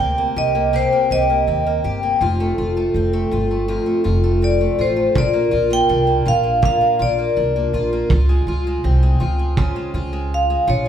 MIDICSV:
0, 0, Header, 1, 5, 480
1, 0, Start_track
1, 0, Key_signature, -2, "major"
1, 0, Tempo, 736196
1, 1442, Time_signature, 4, 2, 24, 8
1, 7097, End_track
2, 0, Start_track
2, 0, Title_t, "Vibraphone"
2, 0, Program_c, 0, 11
2, 0, Note_on_c, 0, 79, 88
2, 222, Note_off_c, 0, 79, 0
2, 248, Note_on_c, 0, 75, 78
2, 492, Note_off_c, 0, 75, 0
2, 495, Note_on_c, 0, 72, 72
2, 732, Note_on_c, 0, 75, 77
2, 735, Note_off_c, 0, 72, 0
2, 1181, Note_off_c, 0, 75, 0
2, 2896, Note_on_c, 0, 74, 70
2, 3136, Note_off_c, 0, 74, 0
2, 3137, Note_on_c, 0, 72, 63
2, 3377, Note_off_c, 0, 72, 0
2, 3379, Note_on_c, 0, 74, 78
2, 3706, Note_off_c, 0, 74, 0
2, 3737, Note_on_c, 0, 79, 81
2, 4096, Note_on_c, 0, 77, 77
2, 4100, Note_off_c, 0, 79, 0
2, 4331, Note_off_c, 0, 77, 0
2, 4339, Note_on_c, 0, 77, 78
2, 4554, Note_off_c, 0, 77, 0
2, 4578, Note_on_c, 0, 74, 64
2, 5024, Note_off_c, 0, 74, 0
2, 6743, Note_on_c, 0, 77, 73
2, 6956, Note_off_c, 0, 77, 0
2, 6974, Note_on_c, 0, 73, 62
2, 7097, Note_off_c, 0, 73, 0
2, 7097, End_track
3, 0, Start_track
3, 0, Title_t, "Twelve-string acoustic guitar"
3, 0, Program_c, 1, 25
3, 0, Note_on_c, 1, 48, 74
3, 0, Note_on_c, 1, 58, 58
3, 0, Note_on_c, 1, 60, 61
3, 0, Note_on_c, 1, 67, 56
3, 110, Note_off_c, 1, 58, 0
3, 118, Note_on_c, 1, 58, 56
3, 230, Note_off_c, 1, 67, 0
3, 237, Note_on_c, 1, 67, 61
3, 350, Note_off_c, 1, 58, 0
3, 357, Note_on_c, 1, 58, 53
3, 469, Note_off_c, 1, 48, 0
3, 474, Note_off_c, 1, 67, 0
3, 476, Note_on_c, 1, 48, 68
3, 482, Note_on_c, 1, 67, 54
3, 595, Note_off_c, 1, 58, 0
3, 603, Note_on_c, 1, 58, 53
3, 716, Note_off_c, 1, 67, 0
3, 724, Note_on_c, 1, 67, 57
3, 837, Note_off_c, 1, 58, 0
3, 845, Note_on_c, 1, 58, 49
3, 962, Note_off_c, 1, 60, 0
3, 964, Note_on_c, 1, 60, 55
3, 1077, Note_off_c, 1, 58, 0
3, 1085, Note_on_c, 1, 58, 55
3, 1194, Note_off_c, 1, 67, 0
3, 1202, Note_on_c, 1, 67, 62
3, 1315, Note_off_c, 1, 58, 0
3, 1323, Note_on_c, 1, 58, 50
3, 1442, Note_off_c, 1, 67, 0
3, 1443, Note_on_c, 1, 41, 66
3, 1448, Note_on_c, 1, 65, 61
3, 1488, Note_off_c, 1, 48, 0
3, 1491, Note_off_c, 1, 58, 0
3, 1566, Note_on_c, 1, 57, 60
3, 1680, Note_off_c, 1, 65, 0
3, 1682, Note_on_c, 1, 65, 51
3, 1797, Note_off_c, 1, 57, 0
3, 1805, Note_on_c, 1, 57, 50
3, 1926, Note_off_c, 1, 60, 0
3, 1928, Note_on_c, 1, 60, 57
3, 2034, Note_off_c, 1, 57, 0
3, 2042, Note_on_c, 1, 57, 59
3, 2165, Note_off_c, 1, 65, 0
3, 2167, Note_on_c, 1, 65, 57
3, 2279, Note_off_c, 1, 57, 0
3, 2287, Note_on_c, 1, 57, 48
3, 2393, Note_off_c, 1, 41, 0
3, 2401, Note_on_c, 1, 41, 67
3, 2402, Note_off_c, 1, 65, 0
3, 2405, Note_on_c, 1, 65, 53
3, 2509, Note_off_c, 1, 57, 0
3, 2516, Note_on_c, 1, 57, 48
3, 2633, Note_off_c, 1, 65, 0
3, 2635, Note_on_c, 1, 65, 57
3, 2755, Note_off_c, 1, 57, 0
3, 2763, Note_on_c, 1, 57, 53
3, 2876, Note_off_c, 1, 60, 0
3, 2883, Note_on_c, 1, 60, 51
3, 2996, Note_off_c, 1, 57, 0
3, 3004, Note_on_c, 1, 57, 50
3, 3118, Note_off_c, 1, 65, 0
3, 3121, Note_on_c, 1, 65, 59
3, 3228, Note_off_c, 1, 57, 0
3, 3236, Note_on_c, 1, 57, 48
3, 3359, Note_on_c, 1, 46, 66
3, 3361, Note_off_c, 1, 65, 0
3, 3362, Note_off_c, 1, 41, 0
3, 3363, Note_on_c, 1, 65, 57
3, 3407, Note_off_c, 1, 57, 0
3, 3411, Note_off_c, 1, 60, 0
3, 3478, Note_on_c, 1, 58, 56
3, 3592, Note_off_c, 1, 65, 0
3, 3595, Note_on_c, 1, 65, 59
3, 3711, Note_off_c, 1, 58, 0
3, 3719, Note_on_c, 1, 58, 55
3, 3841, Note_on_c, 1, 62, 56
3, 3949, Note_off_c, 1, 58, 0
3, 3957, Note_on_c, 1, 58, 56
3, 4076, Note_off_c, 1, 65, 0
3, 4079, Note_on_c, 1, 65, 58
3, 4187, Note_off_c, 1, 58, 0
3, 4195, Note_on_c, 1, 58, 51
3, 4311, Note_off_c, 1, 46, 0
3, 4318, Note_off_c, 1, 65, 0
3, 4318, Note_on_c, 1, 46, 73
3, 4320, Note_on_c, 1, 65, 62
3, 4432, Note_off_c, 1, 58, 0
3, 4440, Note_on_c, 1, 58, 50
3, 4556, Note_off_c, 1, 65, 0
3, 4559, Note_on_c, 1, 65, 60
3, 4676, Note_off_c, 1, 58, 0
3, 4683, Note_on_c, 1, 58, 47
3, 4793, Note_off_c, 1, 62, 0
3, 4801, Note_on_c, 1, 62, 53
3, 4920, Note_off_c, 1, 58, 0
3, 4928, Note_on_c, 1, 58, 56
3, 5044, Note_off_c, 1, 65, 0
3, 5047, Note_on_c, 1, 65, 61
3, 5160, Note_off_c, 1, 58, 0
3, 5168, Note_on_c, 1, 58, 46
3, 5280, Note_off_c, 1, 46, 0
3, 5287, Note_off_c, 1, 65, 0
3, 5289, Note_on_c, 1, 65, 57
3, 5329, Note_off_c, 1, 62, 0
3, 5333, Note_off_c, 1, 58, 0
3, 5405, Note_on_c, 1, 56, 58
3, 5521, Note_off_c, 1, 65, 0
3, 5529, Note_on_c, 1, 65, 60
3, 5643, Note_off_c, 1, 56, 0
3, 5652, Note_on_c, 1, 56, 52
3, 5767, Note_on_c, 1, 60, 55
3, 5877, Note_off_c, 1, 56, 0
3, 5885, Note_on_c, 1, 56, 61
3, 5991, Note_off_c, 1, 65, 0
3, 5999, Note_on_c, 1, 65, 59
3, 6115, Note_off_c, 1, 56, 0
3, 6123, Note_on_c, 1, 56, 51
3, 6240, Note_off_c, 1, 65, 0
3, 6242, Note_on_c, 1, 49, 72
3, 6247, Note_on_c, 1, 65, 54
3, 6354, Note_off_c, 1, 56, 0
3, 6362, Note_on_c, 1, 56, 51
3, 6477, Note_off_c, 1, 65, 0
3, 6484, Note_on_c, 1, 65, 61
3, 6595, Note_off_c, 1, 56, 0
3, 6603, Note_on_c, 1, 56, 51
3, 6838, Note_off_c, 1, 56, 0
3, 6846, Note_on_c, 1, 56, 55
3, 6952, Note_off_c, 1, 65, 0
3, 6960, Note_on_c, 1, 65, 61
3, 7069, Note_off_c, 1, 56, 0
3, 7077, Note_on_c, 1, 56, 52
3, 7097, Note_off_c, 1, 49, 0
3, 7097, Note_off_c, 1, 56, 0
3, 7097, Note_off_c, 1, 60, 0
3, 7097, Note_off_c, 1, 65, 0
3, 7097, End_track
4, 0, Start_track
4, 0, Title_t, "Upright bass"
4, 0, Program_c, 2, 32
4, 0, Note_on_c, 2, 38, 77
4, 197, Note_off_c, 2, 38, 0
4, 237, Note_on_c, 2, 36, 73
4, 535, Note_off_c, 2, 36, 0
4, 718, Note_on_c, 2, 36, 73
4, 917, Note_off_c, 2, 36, 0
4, 961, Note_on_c, 2, 39, 78
4, 1158, Note_off_c, 2, 39, 0
4, 1205, Note_on_c, 2, 31, 69
4, 1401, Note_off_c, 2, 31, 0
4, 1438, Note_on_c, 2, 29, 80
4, 1637, Note_off_c, 2, 29, 0
4, 1683, Note_on_c, 2, 29, 73
4, 1880, Note_off_c, 2, 29, 0
4, 1919, Note_on_c, 2, 29, 79
4, 2117, Note_off_c, 2, 29, 0
4, 2161, Note_on_c, 2, 31, 82
4, 2457, Note_off_c, 2, 31, 0
4, 2642, Note_on_c, 2, 29, 76
4, 3036, Note_off_c, 2, 29, 0
4, 3122, Note_on_c, 2, 33, 78
4, 3319, Note_off_c, 2, 33, 0
4, 3359, Note_on_c, 2, 34, 93
4, 3558, Note_off_c, 2, 34, 0
4, 3603, Note_on_c, 2, 34, 77
4, 3800, Note_off_c, 2, 34, 0
4, 3843, Note_on_c, 2, 36, 88
4, 4039, Note_off_c, 2, 36, 0
4, 4084, Note_on_c, 2, 34, 88
4, 4379, Note_off_c, 2, 34, 0
4, 4565, Note_on_c, 2, 34, 79
4, 4761, Note_off_c, 2, 34, 0
4, 4805, Note_on_c, 2, 36, 80
4, 5001, Note_off_c, 2, 36, 0
4, 5043, Note_on_c, 2, 34, 74
4, 5239, Note_off_c, 2, 34, 0
4, 5282, Note_on_c, 2, 37, 96
4, 5479, Note_off_c, 2, 37, 0
4, 5521, Note_on_c, 2, 37, 74
4, 5718, Note_off_c, 2, 37, 0
4, 5764, Note_on_c, 2, 36, 87
4, 5960, Note_off_c, 2, 36, 0
4, 6006, Note_on_c, 2, 37, 82
4, 6299, Note_off_c, 2, 37, 0
4, 6480, Note_on_c, 2, 37, 78
4, 6874, Note_off_c, 2, 37, 0
4, 6961, Note_on_c, 2, 34, 90
4, 7097, Note_off_c, 2, 34, 0
4, 7097, End_track
5, 0, Start_track
5, 0, Title_t, "Drums"
5, 3361, Note_on_c, 9, 36, 101
5, 3427, Note_off_c, 9, 36, 0
5, 4322, Note_on_c, 9, 36, 101
5, 4387, Note_off_c, 9, 36, 0
5, 5281, Note_on_c, 9, 36, 105
5, 5347, Note_off_c, 9, 36, 0
5, 6241, Note_on_c, 9, 36, 101
5, 6307, Note_off_c, 9, 36, 0
5, 7097, End_track
0, 0, End_of_file